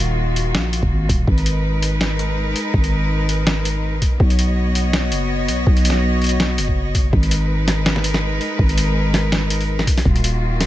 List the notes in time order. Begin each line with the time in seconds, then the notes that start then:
Already playing: D#1 D#3 A#3 F4 F#4
0.36 closed hi-hat
0.55 A#1, snare
0.73 closed hi-hat
0.83 D#1, kick
0.91 G#1
1.09 D#1, kick, closed hi-hat
1.27 G#1 G#3 D#4 A#4 B4, kick
1.38 closed hi-hat
1.46 closed hi-hat
1.82 closed hi-hat
2.01 snare
2.19 closed hi-hat
2.56 closed hi-hat
2.74 G#1, kick
2.84 closed hi-hat
3.29 closed hi-hat
3.47 snare
3.65 closed hi-hat
4.02 kick, closed hi-hat
4.20 B1 B3 F#4 C#5 D#5, kick
4.30 closed hi-hat
4.39 closed hi-hat
4.75 closed hi-hat
4.93 snare
5.11 F#1, closed hi-hat
5.48 B1, closed hi-hat
5.67 B1, kick
5.77 closed hi-hat
5.85 closed hi-hat
5.90 snare
6.22 closed hi-hat
6.24 closed hi-hat
6.27 closed hi-hat
6.29 closed hi-hat
6.40 snare
6.58 F#1, closed hi-hat
6.68 kick
6.95 kick, closed hi-hat
7.12 G#1 G#3 D#4 A#4 B4, kick
7.23 closed hi-hat
7.31 closed hi-hat
7.68 snare, closed hi-hat
7.86 snare
7.96 snare
8.04 closed hi-hat
8.14 snare
8.41 open hi-hat
8.59 G#1, kick
8.69 closed hi-hat
8.78 closed hi-hat
9.14 snare, open hi-hat
9.32 snare
9.50 closed hi-hat
9.61 open hi-hat
9.79 snare
9.87 kick, closed hi-hat
9.97 snare, open hi-hat
10.05 D#1 D#3 A#3 F4 F#4, kick
10.16 closed hi-hat
10.24 closed hi-hat
10.61 snare, closed hi-hat